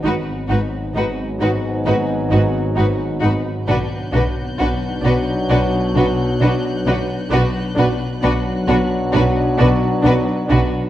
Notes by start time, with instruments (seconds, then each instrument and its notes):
0.03 synth drone G#1, double bass section G#1, trombone section G#2 F#3, cello section G#2, french horn section B3 D#4, viola section D#4, violin section F#4 B4
0.49 double bass section G#1, cello section G#2, viola section D#4, violin section F#4 B4
0.95 double bass section G#1, cello section G#2, viola section D#4, violin section F#4 B4
1.40 double bass section G#1, cello section G#2, viola section D#4, violin section F#4 B4
1.85 double bass section G#1, cello section G#2, viola section D#4, violin section F#4 B4
2.30 double bass section G#1, cello section G#2, viola section D#4, violin section F#4 B4
2.75 double bass section G#1, cello section G#2, viola section D#4, violin section F#4 B4
3.21 double bass section G#1, cello section G#2, viola section D#4, violin section F#4 B4
3.67 synth drone B1, double bass section B1, cello section B2, trombone section B2 F#3, french horn section B3 D4, viola section D4, violin section F#4 B4 F#6 G6
4.12 double bass section B1, cello section B2, viola section D4, violin section F#4 B4
4.58 double bass section B1, cello section B2, viola section D4, violin section F#4 B4
5.03 double bass section B1, cello section B2, viola section D4, violin section F#4 B4
5.50 double bass section B1, cello section B2, viola section D4, violin section F#4 B4
5.95 double bass section B1, cello section B2, viola section D4, violin section F#4 B4
6.40 double bass section B1, cello section B2, viola section D4, violin section F#4 B4
6.86 double bass section B1, cello section B2, viola section D4, violin section F#4 B4
7.31 double bass section B1, synth drone B1, trombone section B2 F#3, cello section B2, french horn section B3 D4, viola section D4, violin section F#4 B4
7.77 double bass section B1, cello section B2, viola section D4, violin section F#4 B4
8.08 violin section F#6
8.23 double bass section B1, cello section B2, viola section D4, violin section F#4 B4
8.67 double bass section B1, cello section B2, viola section D4, violin section F#4 B4
9.12 double bass section B1, cello section B2, viola section D4, violin section F#4 B4
9.57 double bass section B1, cello section B2, viola section D4, violin section F#4 B4
10.03 double bass section B1, cello section B2, viola section D4, violin section F#4 B4
10.49 double bass section B1, cello section B2, viola section D4, violin section F#4 B4